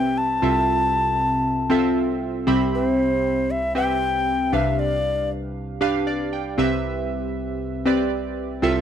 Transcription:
Already playing: synth keys C2 C3 C4 G4 B4 E5, ocarina G5
0.18 ocarina A5
0.42 synth keys C2 C3 C4 F4 A4 E5
1.70 synth keys C4 F4 A4 E5
2.47 synth keys C2 C3 C4 G4 E5 B5
2.75 ocarina C5
3.51 ocarina E5
3.75 synth keys C4 G4 B4 E5, ocarina G5
4.52 synth keys C2 C3 D4 G4 B4 F5, ocarina E5
4.79 ocarina D5
5.81 synth keys D4 G4 B4 F5
6.07 synth keys D5
6.33 synth keys G5
6.58 synth keys C2 C3 C4 G4 B4 E5
7.85 synth keys C4 G4 B4 D5
8.62 synth keys C2 C3 C4 F4 A4 E5

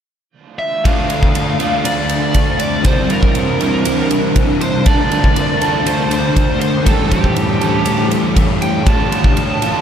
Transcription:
0.59 lead electric guitar E5
0.85 ambient pad D2 D3 D4 C5, overdriven electric guitar D3 A3 D4 F4, distorted electric guitar D3 A3 D4, lead electric guitar F5, kick, ride
1.10 ride
1.23 kick
1.35 distorted electric guitar D3 A3 D4, ride
1.59 overdriven electric guitar D3 A3 D4 F4, ride
1.84 distorted electric guitar D3 A3 D4, lead electric guitar D5, ride
2.09 ride
2.34 distorted electric guitar D3 A3 D4, kick, ride
2.59 lead electric guitar D5, ride
2.84 ambient pad C2 C3 A#4, distorted electric guitar C3 G3 C4, overdriven electric guitar C3 E3 G3 C4 E4 A#4, lead electric guitar C5, kick, ride
3.10 lead electric guitar A#4, ride
3.23 kick
3.35 distorted electric guitar C3 G3 C4, ride
3.60 overdriven electric guitar C3 E3 G3 C4 E4 A#4, ride
3.84 distorted electric guitar C3 G3 C4, ride
4.11 ride
4.36 distorted electric guitar C3 G3 C4, kick, ride
4.61 lead electric guitar C5, ride
4.86 ambient pad D2 D3 C5, distorted electric guitar D3 A3 D4, overdriven electric guitar D3 A3 D4 F4, lead electric guitar D5, kick, ride
4.90 overdriven electric guitar A4
5.12 ride
5.24 kick
5.36 distorted electric guitar D3 A3 D4, ride
5.61 overdriven electric guitar D3 A3 D4 F4 A4, ride
5.85 distorted electric guitar D3 A3 D4, lead electric guitar C5, ride
6.11 ride
6.36 distorted electric guitar D3 A3 D4, kick, ride
6.61 lead electric guitar C5, ride
6.84 distorted electric guitar A2 E3 A3, ambient pad A2 E3 G4 C#5, overdriven electric guitar A2 E3 G3 C#4, lead electric guitar A4, kick, ride
6.89 overdriven electric guitar G4 A4
7.11 lead electric guitar G4, kick, ride
7.24 kick
7.35 distorted electric guitar A2 E3 A3, ride
7.61 overdriven electric guitar A2 E3 G3 C#4 G4 A4, ride
7.86 distorted electric guitar A2 E3 A3, ride
8.11 ride
8.36 distorted electric guitar A2 E3 A3, kick, ride
8.62 lead electric guitar G5, ride
8.86 ambient pad D2 D3 D4 C5, overdriven electric guitar D3 A3 D4 F4 A4, distorted electric guitar D3 A3 D4, lead electric guitar A5, kick, ride
9.12 ride
9.24 kick
9.37 distorted electric guitar D3 A3 D4, ride
9.62 overdriven electric guitar D3 A3 D4 F4 A4, ride

